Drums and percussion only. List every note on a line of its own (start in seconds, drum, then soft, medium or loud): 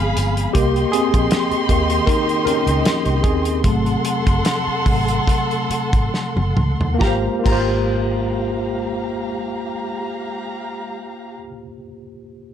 0.17 closed hi-hat medium
0.17 tambourine soft
0.37 closed hi-hat medium
0.55 kick loud
0.55 closed hi-hat medium
0.76 closed hi-hat soft
0.93 closed hi-hat medium
1.14 kick medium
1.14 closed hi-hat medium
1.31 snare loud
1.31 closed hi-hat medium
1.51 closed hi-hat soft
1.69 kick medium
1.69 closed hi-hat medium
1.90 closed hi-hat medium
2.07 kick medium
2.07 closed hi-hat medium
2.29 closed hi-hat soft
2.47 closed hi-hat medium
2.67 closed hi-hat soft
2.85 snare loud
2.85 closed hi-hat medium
3.05 closed hi-hat soft
3.24 kick loud
3.24 closed hi-hat medium
3.45 closed hi-hat medium
3.64 kick loud
3.64 closed hi-hat medium
3.86 closed hi-hat soft
4.05 closed hi-hat medium
4.27 kick medium
4.27 closed hi-hat medium
4.45 snare loud
4.45 closed hi-hat medium
4.86 kick medium
4.86 open hi-hat soft
5.08 closed hi-hat medium
5.27 kick medium
5.27 closed hi-hat medium
5.51 closed hi-hat soft
5.71 closed hi-hat medium
5.93 kick medium
5.93 closed hi-hat soft
6.14 snare medium
6.37 high tom medium
6.57 mid tom medium
6.81 floor tom medium
7.01 kick loud
7.01 snare medium
7.46 kick medium
7.46 crash medium